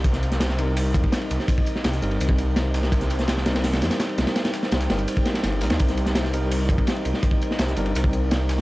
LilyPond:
<<
  \new Staff \with { instrumentName = "Ambient pad" } { \time 4/4 \key c \minor \tempo 4 = 167 << { ees''1~ | ees''1 | g''1~ | g''1 |
ees''1~ | ees''1 | } \\ { <g' bes' c''>1~ | <g' bes' c''>1~ | <g' bes' c''>1~ | <g' bes' c''>1~ |
<g' bes' c''>1~ | <g' bes' c''>1 | } >> }
  \new Staff \with { instrumentName = "Tine electric piano" } { \time 4/4 \key c \minor r4. <g c' ees' bes'>2~ <g c' ees' bes'>8~ | <g c' ees' bes'>4. <g c' ees' bes'>2~ <g c' ees' bes'>8~ | <g c' ees' bes'>4. <g c' ees' bes'>2~ <g c' ees' bes'>8~ | <g c' ees' bes'>4. <g c' ees' bes'>2 <g c' ees' bes'>8~ |
<g c' ees' bes'>4. <g c' ees' bes'>2~ <g c' ees' bes'>8~ | <g c' ees' bes'>4. <g c' ees' bes'>2~ <g c' ees' bes'>8 | }
  \new Staff \with { instrumentName = "Detuned saw bass" } { \clef bass \time 4/4 \key c \minor c,2~ c,8 f,16 r8. c,16 r16 | r4 c,8 g,,8 c,2 | c,2~ c,8 f,16 r8. c,16 r16 | r4 c,8 g,,8 r4 g,,8 bes,,16 ees,16 |
c,2~ c,8 f,16 r8. c,16 r16 | r4 c,8 g,,8 c,2 | }
  \new DrumStaff \with { instrumentName = "Drums" } \drummode { \time 4/4 <bd cymr tamb>16 <hh sn>16 <cymr tamb>16 <hh sn>16 <cymr sn tamb>16 sn16 <cymr tamb>8 <hho cymr>8 <bd cymr tamb>16 bd16 <cymr sn tamb>16 cymr16 <cymr tamb>16 sn16 | <bd cymr tamb>16 bd16 <cymr tamb>16 sn16 <cymr sn tamb>16 <hh sn>16 <cymr tamb>16 cymr16 <cymr tamb>16 bd16 <cymr tamb>8 <cymr sn tamb>8 <cymr sn tamb>16 sn16 | <bd cymr tamb>16 <hh sn>16 <cymr tamb>16 <hh sn>16 <cymr sn tamb>16 sn16 <cymr sn tamb>16 <cymr sn>16 <hho cymr sn>16 <cymr sn>16 <cymr sn tamb>16 <cymr sn tamb>16 <cymr sn tamb>16 cymr16 <cymr sn tamb>16 <cymr sn>16 | <cymr sn tamb>16 <cymr sn>16 <cymr sn tamb>16 sn16 <cymr sn tamb>16 <sn tamb>16 <cymr sn>16 <cymr tamb>16 <cymr tamb>16 bd16 <cymr sn tamb>16 <cymr sn>16 <cymr sn tamb>16 cymr16 <cymr sn tamb>16 <cymr sn>16 |
<bd cymr tamb>16 <hh sn>16 <cymr tamb>16 <hh sn>16 <cymr sn tamb>16 sn16 <cymr tamb>8 <hho cymr>8 <bd cymr tamb>16 bd16 <cymr sn tamb>16 cymr16 <cymr tamb>16 sn16 | <bd cymr tamb>16 bd16 <cymr tamb>16 sn16 <cymr sn tamb>16 <hh sn>16 <cymr tamb>16 cymr16 <cymr tamb>16 bd16 <cymr tamb>8 <cymr sn tamb>8 <cymr sn tamb>8 | }
>>